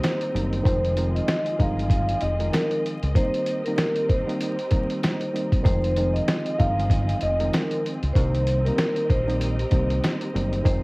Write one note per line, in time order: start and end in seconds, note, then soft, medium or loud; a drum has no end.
0.00 0.29 D#3 medium
0.00 0.29 G3 medium
0.00 0.30 A#3 medium
0.00 0.30 C4 medium
0.00 3.12 C4 medium
0.00 0.30 D#4 loud
0.00 0.63 G4 medium
0.00 0.63 A#4 medium
0.00 0.62 C5 medium
0.00 0.63 D#5 medium
0.00 closed hi-hat loud
0.04 snare loud
0.21 closed hi-hat medium
0.34 0.61 F#1 loud
0.34 0.62 D#3 medium
0.34 0.63 G3 medium
0.34 0.63 A#3 medium
0.34 0.63 C4 medium
0.34 0.64 D#4 medium
0.34 closed hi-hat medium
0.53 closed hi-hat medium
0.63 1.19 F1 loud
0.63 0.93 D#3 loud
0.63 0.94 F3 medium
0.63 0.94 G#3 medium
0.63 0.94 C4 medium
0.63 0.94 D#4 loud
0.63 3.13 F4 medium
0.63 3.13 G#4 medium
0.63 1.12 C5 loud
0.63 5.61 D#5 medium
0.63 kick loud
0.63 closed hi-hat loud
0.84 closed hi-hat medium
0.97 1.55 D#3 medium
0.97 1.55 F3 medium
0.97 1.55 G#3 medium
0.97 1.56 C4 medium
0.97 1.56 D#4 loud
0.97 closed hi-hat medium
1.15 1.56 D#5 medium
1.15 closed hi-hat soft
1.28 snare loud
1.28 closed hi-hat loud
1.46 closed hi-hat medium
1.58 2.13 G1 medium
1.58 2.32 D#3 medium
1.58 2.32 F3 medium
1.58 2.32 G#3 medium
1.58 2.33 C4 medium
1.58 2.33 D#4 loud
1.58 2.19 F5 medium
1.58 kick medium
1.58 closed hi-hat medium
1.79 closed hi-hat medium
1.90 kick loud
1.90 closed hi-hat loud
2.09 closed hi-hat medium
2.21 2.49 F1 loud
2.21 2.50 D#5 medium
2.21 closed hi-hat medium
2.40 2.96 D#3 loud
2.40 2.96 F3 medium
2.40 2.97 G#3 medium
2.40 2.97 C4 medium
2.40 2.97 D#4 loud
2.40 closed hi-hat medium
2.53 2.81 A#4 medium
2.53 snare loud
2.53 closed hi-hat loud
2.71 closed hi-hat medium
2.86 closed hi-hat medium
3.03 3.14 C#2 medium
3.03 closed hi-hat medium
3.15 3.60 D#3 medium
3.15 3.61 G3 medium
3.15 3.61 A#3 medium
3.15 5.63 C4 medium
3.15 3.61 C4 medium
3.15 3.61 D#4 loud
3.15 5.63 G4 medium
3.15 5.63 A#4 medium
3.15 3.62 C5 loud
3.15 kick loud
3.15 closed hi-hat loud
3.34 closed hi-hat medium
3.46 closed hi-hat medium
3.64 4.22 D#3 loud
3.64 4.23 G3 medium
3.64 4.23 A#3 medium
3.64 4.23 C4 medium
3.64 4.23 D#4 loud
3.64 3.75 A#4 medium
3.64 closed hi-hat soft
3.77 4.05 A#4 medium
3.77 snare loud
3.77 closed hi-hat loud
3.96 closed hi-hat medium
4.09 5.61 C5 medium
4.09 kick medium
4.09 closed hi-hat medium
4.27 4.55 D#3 loud
4.27 4.55 G3 medium
4.27 4.56 A#3 medium
4.27 4.56 C4 medium
4.27 4.56 D#4 loud
4.27 closed hi-hat medium
4.41 closed hi-hat loud
4.59 closed hi-hat medium
4.70 5.29 D#3 medium
4.70 5.29 G3 medium
4.70 5.29 A#3 medium
4.70 5.30 C4 medium
4.70 5.30 D#4 loud
4.70 kick loud
4.70 closed hi-hat medium
4.90 closed hi-hat medium
5.03 snare loud
5.03 closed hi-hat loud
5.21 closed hi-hat medium
5.33 5.62 D#3 medium
5.33 5.63 G3 medium
5.33 5.63 A#3 medium
5.33 5.63 C4 medium
5.33 5.63 D#4 medium
5.33 closed hi-hat medium
5.52 kick loud
5.52 closed hi-hat medium
5.63 6.19 F1 loud
5.63 5.93 D#3 loud
5.63 5.94 F3 medium
5.63 5.94 G#3 medium
5.63 5.94 C4 medium
5.63 10.83 C4 medium
5.63 5.94 D#4 loud
5.63 8.13 F4 medium
5.63 8.13 G#4 medium
5.63 6.11 C5 loud
5.63 8.13 D#5 medium
5.63 kick loud
5.63 closed hi-hat loud
5.84 closed hi-hat medium
5.96 6.55 D#3 medium
5.96 6.55 F3 medium
5.96 6.55 G#3 medium
5.96 6.55 C4 medium
5.96 6.56 D#4 loud
5.96 closed hi-hat medium
6.14 6.56 D#5 medium
6.14 closed hi-hat soft
6.28 snare loud
6.28 closed hi-hat loud
6.46 closed hi-hat medium
6.58 7.13 G1 medium
6.58 7.32 D#3 medium
6.58 7.32 F3 medium
6.58 7.32 G#3 medium
6.58 7.32 C4 medium
6.58 7.33 D#4 loud
6.58 7.17 F5 medium
6.58 kick medium
6.58 closed hi-hat medium
6.79 closed hi-hat medium
6.90 kick loud
6.90 closed hi-hat loud
7.09 closed hi-hat medium
7.21 7.49 F1 loud
7.21 7.50 D#5 medium
7.21 closed hi-hat medium
7.39 7.96 D#3 loud
7.39 7.96 F3 medium
7.39 7.97 G#3 medium
7.39 7.97 C4 medium
7.39 7.97 D#4 loud
7.39 closed hi-hat medium
7.53 7.81 A#4 medium
7.53 snare loud
7.53 closed hi-hat loud
7.71 closed hi-hat medium
7.86 closed hi-hat medium
8.03 8.14 C#2 medium
8.03 closed hi-hat medium
8.13 8.69 C2 loud
8.13 8.60 D#3 medium
8.13 8.61 G3 medium
8.13 8.61 A#3 medium
8.13 8.61 C4 medium
8.13 8.61 D#4 loud
8.13 10.63 G4 medium
8.13 10.64 A#4 medium
8.13 8.61 C5 loud
8.13 10.64 D#5 medium
8.13 kick loud
8.13 closed hi-hat loud
8.35 closed hi-hat medium
8.47 closed hi-hat medium
8.65 9.22 D#3 loud
8.65 9.23 G3 medium
8.65 9.23 A#3 medium
8.65 9.23 C4 medium
8.65 9.23 D#4 loud
8.65 8.75 A#4 medium
8.65 closed hi-hat medium
8.76 9.05 A#4 medium
8.76 snare loud
8.76 closed hi-hat loud
8.96 closed hi-hat medium
9.10 9.63 A#1 medium
9.10 10.62 C5 medium
9.10 kick loud
9.10 closed hi-hat medium
9.27 9.55 D#3 loud
9.27 9.55 G3 medium
9.27 9.56 A#3 medium
9.27 9.56 C4 medium
9.27 9.56 D#4 loud
9.27 closed hi-hat medium
9.41 closed hi-hat loud
9.59 closed hi-hat medium
9.70 9.99 C2 medium
9.70 10.29 D#3 medium
9.70 10.29 G3 medium
9.70 10.30 A#3 medium
9.70 10.30 C4 medium
9.70 10.30 D#4 loud
9.70 kick loud
9.70 closed hi-hat medium
9.90 closed hi-hat medium
10.04 snare loud
10.04 closed hi-hat loud
10.21 closed hi-hat medium
10.33 10.61 F#1 loud
10.33 10.62 D#3 medium
10.33 10.63 G3 medium
10.33 10.63 A#3 medium
10.33 10.63 C4 medium
10.33 10.64 D#4 medium
10.33 closed hi-hat medium
10.53 closed hi-hat medium
10.64 10.83 F1 loud
10.64 10.83 D#3 loud
10.64 10.83 F3 medium
10.64 10.83 G#3 medium
10.64 10.83 C4 medium
10.64 10.83 D#4 loud
10.64 10.83 F4 medium
10.64 10.83 G#4 medium
10.64 10.83 C5 loud
10.64 10.83 D#5 medium
10.64 kick loud
10.64 closed hi-hat loud